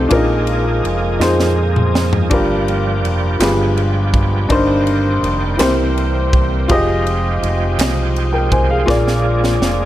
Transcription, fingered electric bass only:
0, 0, Header, 1, 2, 480
1, 0, Start_track
1, 0, Tempo, 729927
1, 78, Time_signature, 6, 3, 24, 8
1, 6479, End_track
2, 0, Start_track
2, 0, Title_t, "Fingered electric bass"
2, 0, Program_c, 0, 33
2, 70, Note_on_c, 0, 34, 102
2, 528, Note_off_c, 0, 34, 0
2, 552, Note_on_c, 0, 29, 77
2, 776, Note_off_c, 0, 29, 0
2, 784, Note_on_c, 0, 41, 88
2, 1485, Note_off_c, 0, 41, 0
2, 1517, Note_on_c, 0, 31, 100
2, 1991, Note_off_c, 0, 31, 0
2, 1991, Note_on_c, 0, 29, 83
2, 2215, Note_off_c, 0, 29, 0
2, 2233, Note_on_c, 0, 31, 102
2, 2929, Note_off_c, 0, 31, 0
2, 2959, Note_on_c, 0, 31, 98
2, 3412, Note_off_c, 0, 31, 0
2, 3435, Note_on_c, 0, 29, 93
2, 3657, Note_off_c, 0, 29, 0
2, 3681, Note_on_c, 0, 36, 104
2, 4373, Note_off_c, 0, 36, 0
2, 4402, Note_on_c, 0, 29, 105
2, 4853, Note_off_c, 0, 29, 0
2, 4881, Note_on_c, 0, 29, 96
2, 5100, Note_off_c, 0, 29, 0
2, 5112, Note_on_c, 0, 36, 90
2, 5808, Note_off_c, 0, 36, 0
2, 5839, Note_on_c, 0, 34, 104
2, 6291, Note_off_c, 0, 34, 0
2, 6314, Note_on_c, 0, 29, 85
2, 6479, Note_off_c, 0, 29, 0
2, 6479, End_track
0, 0, End_of_file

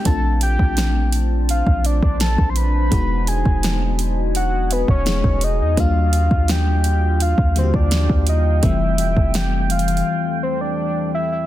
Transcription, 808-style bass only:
0, 0, Header, 1, 2, 480
1, 0, Start_track
1, 0, Tempo, 714286
1, 40, Time_signature, 4, 2, 24, 8
1, 7704, End_track
2, 0, Start_track
2, 0, Title_t, "808-style bass"
2, 0, Program_c, 0, 38
2, 39, Note_on_c, 0, 34, 125
2, 385, Note_off_c, 0, 34, 0
2, 399, Note_on_c, 0, 34, 102
2, 1093, Note_off_c, 0, 34, 0
2, 1120, Note_on_c, 0, 34, 105
2, 1350, Note_off_c, 0, 34, 0
2, 1362, Note_on_c, 0, 34, 109
2, 1591, Note_off_c, 0, 34, 0
2, 1602, Note_on_c, 0, 34, 107
2, 1946, Note_off_c, 0, 34, 0
2, 1960, Note_on_c, 0, 28, 123
2, 2305, Note_off_c, 0, 28, 0
2, 2323, Note_on_c, 0, 28, 99
2, 3254, Note_off_c, 0, 28, 0
2, 3282, Note_on_c, 0, 28, 102
2, 3511, Note_off_c, 0, 28, 0
2, 3522, Note_on_c, 0, 28, 112
2, 3763, Note_on_c, 0, 40, 104
2, 3773, Note_off_c, 0, 28, 0
2, 3876, Note_off_c, 0, 40, 0
2, 3880, Note_on_c, 0, 39, 119
2, 4225, Note_off_c, 0, 39, 0
2, 4240, Note_on_c, 0, 39, 97
2, 4933, Note_off_c, 0, 39, 0
2, 4959, Note_on_c, 0, 39, 103
2, 5190, Note_off_c, 0, 39, 0
2, 5200, Note_on_c, 0, 39, 109
2, 5430, Note_off_c, 0, 39, 0
2, 5440, Note_on_c, 0, 39, 114
2, 5785, Note_off_c, 0, 39, 0
2, 5799, Note_on_c, 0, 29, 109
2, 6040, Note_on_c, 0, 28, 101
2, 6051, Note_off_c, 0, 29, 0
2, 6154, Note_off_c, 0, 28, 0
2, 6160, Note_on_c, 0, 29, 102
2, 6736, Note_off_c, 0, 29, 0
2, 7704, End_track
0, 0, End_of_file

